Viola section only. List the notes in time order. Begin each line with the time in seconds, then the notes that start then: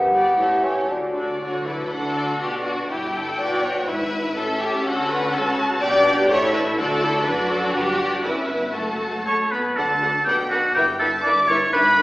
0.13 G4
0.38 G4
0.63 G4
1.15 F#4
1.41 F#4
1.67 E4
1.92 D4 F#4
2.42 D4
2.90 E4
3.40 F#4
3.88 E4
4.36 C#4 A4
4.86 F#4
5.33 F#4
5.82 D4 G4
6.05 G4
6.30 E4 A4
6.78 F#4 A4
7.02 E4
7.26 D4 F#4
7.76 D4
8.26 C#4 B4
8.50 B3
8.75 A3 A4
9.77 D4 A4
10.02 D4 A4
10.27 D4 B4
10.51 D4 B4
10.75 E4 B4
11.01 E4 B4
11.25 E4 B4
11.49 E4 B4
11.73 D4 B4
11.98 D4 B4